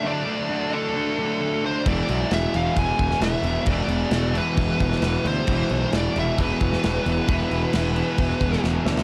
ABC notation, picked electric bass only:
X:1
M:4/4
L:1/8
Q:1/4=133
K:Ephr
V:1 name="Picked electric bass" clef=bass
z8 | E,,, B,,, E,,, E,,, E,,, E,,, E,,, E,,, | E,,, E,,, E,,,2 E,,, E,,, E,,, D,, | E,,, B,,, E,,, E,,, E,,, E,,, E,,, E,,, |
E,,, E,,, E,,,2 E,,, E,,, E,,, D,, |]